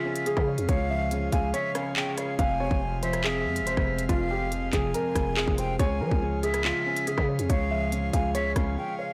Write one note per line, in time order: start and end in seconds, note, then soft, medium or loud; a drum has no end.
0.00 0.26 C#3 loud
0.00 2.36 C#3 medium
0.00 0.26 F3 medium
0.00 0.69 G#3 medium
0.00 5.75 G#3 medium
0.00 0.24 F4 medium
0.00 5.75 F4 medium
0.00 0.41 E5 medium
0.05 1.11 C#4 medium
0.16 closed hi-hat medium
0.26 0.67 C#3 medium
0.26 0.66 G#4 medium
0.26 closed hi-hat medium
0.37 0.59 C#3 loud
0.37 kick loud
0.37 cross-stick medium
0.48 1.54 C#5 medium
0.58 0.68 F2 loud
0.58 closed hi-hat medium
0.69 1.30 C#2 loud
0.69 1.10 C#3 medium
0.69 0.85 C#5 medium
0.69 1.29 F5 loud
0.69 kick loud
0.69 closed hi-hat medium
0.90 1.96 F3 medium
0.90 1.07 E5 medium
1.11 1.53 C#3 medium
1.11 closed hi-hat medium
1.32 1.53 C#2 loud
1.32 2.39 G#3 medium
1.32 1.49 F5 medium
1.32 1.53 G#5 medium
1.32 kick medium
1.32 closed hi-hat medium
1.54 1.95 C#3 medium
1.54 2.35 C#5 loud
1.54 1.74 E5 medium
1.54 closed hi-hat medium
1.75 2.39 C#4 medium
1.75 1.95 F5 medium
1.75 cross-stick loud
1.75 closed hi-hat medium
1.96 2.39 C#3 medium
1.96 2.17 G5 medium
1.96 clap loud
2.17 2.39 C#5 medium
2.17 2.38 F5 medium
2.17 cross-stick medium
2.17 closed hi-hat medium
2.39 2.70 F1 loud
2.39 2.80 F2 medium
2.39 5.76 C3 medium
2.39 2.56 F5 loud
2.39 2.99 G#5 loud
2.39 kick loud
2.39 closed hi-hat medium
2.60 3.67 C3 medium
2.60 2.77 C#5 medium
2.71 3.47 F1 loud
2.71 kick loud
2.82 3.23 F2 medium
3.03 4.09 F3 medium
3.03 3.19 C5 medium
3.03 4.05 E5 medium
3.03 closed hi-hat medium
3.13 cross-stick medium
3.13 closed hi-hat medium
3.24 3.65 F2 medium
3.24 3.64 G#4 medium
3.24 clap loud
3.45 3.63 F2 loud
3.45 4.52 G#3 medium
3.56 closed hi-hat medium
3.61 3.76 F1 loud
3.66 4.08 F2 medium
3.66 4.07 C5 medium
3.66 closed hi-hat medium
3.77 4.08 F1 loud
3.77 kick loud
3.77 cross-stick medium
3.88 4.94 C4 medium
3.99 closed hi-hat medium
4.09 4.70 F1 loud
4.09 4.50 F2 loud
4.09 4.26 F4 medium
4.09 4.69 F5 loud
4.09 kick loud
4.09 closed hi-hat medium
4.31 5.37 C3 medium
4.31 4.47 G4 medium
4.52 4.93 F2 medium
4.52 closed hi-hat medium
4.73 4.93 F1 loud
4.73 5.79 F3 medium
4.73 4.90 G#4 medium
4.73 5.54 G#5 medium
4.73 kick medium
4.73 clap medium
4.73 closed hi-hat medium
4.94 5.35 F2 medium
4.94 5.34 A#4 medium
4.94 closed hi-hat medium
5.16 5.46 F1 loud
5.16 5.79 G#3 medium
5.16 kick loud
5.16 cross-stick loud
5.16 closed hi-hat medium
5.37 5.79 F2 medium
5.37 5.53 G#4 medium
5.37 clap loud
5.48 5.78 F1 loud
5.48 kick loud
5.58 5.79 C4 medium
5.58 5.75 C5 medium
5.58 5.78 G5 loud
5.58 closed hi-hat medium
5.79 6.02 C#2 loud
5.79 9.13 C#3 medium
5.79 6.20 C#3 loud
5.79 9.13 G#3 medium
5.79 9.13 F4 medium
5.79 5.96 C#5 loud
5.79 6.39 G#5 medium
5.79 kick loud
5.79 closed hi-hat medium
6.00 7.07 F3 medium
6.00 6.11 F3 loud
6.00 6.17 A#4 medium
6.11 6.73 C#2 loud
6.11 kick medium
6.22 6.63 C#3 loud
6.43 7.50 G#3 medium
6.43 6.60 G#4 medium
6.43 7.28 E5 medium
6.43 closed hi-hat medium
6.54 cross-stick medium
6.54 closed hi-hat medium
6.65 7.05 C#3 medium
6.65 7.05 F4 medium
6.65 clap loud
6.86 7.92 C#4 medium
6.96 closed hi-hat medium
7.07 7.48 C#3 medium
7.07 7.47 G#4 medium
7.07 closed hi-hat medium
7.18 7.40 C#3 loud
7.18 kick loud
7.18 cross-stick medium
7.29 8.35 C#5 medium
7.39 7.49 F2 loud
7.39 closed hi-hat medium
7.50 8.11 C#2 loud
7.50 7.91 C#3 medium
7.50 7.66 C#5 medium
7.50 8.10 F5 loud
7.50 kick loud
7.50 closed hi-hat medium
7.71 8.77 F3 medium
7.71 7.87 E5 medium
7.92 8.34 C#3 medium
7.92 closed hi-hat medium
8.13 8.54 C#2 loud
8.13 9.13 G#3 medium
8.13 8.30 F5 medium
8.13 8.34 G#5 medium
8.13 kick medium
8.13 closed hi-hat medium
8.35 8.76 C#3 medium
8.35 9.13 C#5 loud
8.35 8.55 E5 medium
8.35 closed hi-hat medium
8.56 8.77 C#2 loud
8.56 9.13 C#4 loud
8.56 8.76 F5 medium
8.56 kick medium
8.56 cross-stick loud
8.56 closed hi-hat medium
8.77 9.13 C#3 medium
8.77 8.97 G5 medium
8.98 9.13 C#5 medium
8.98 9.13 F5 medium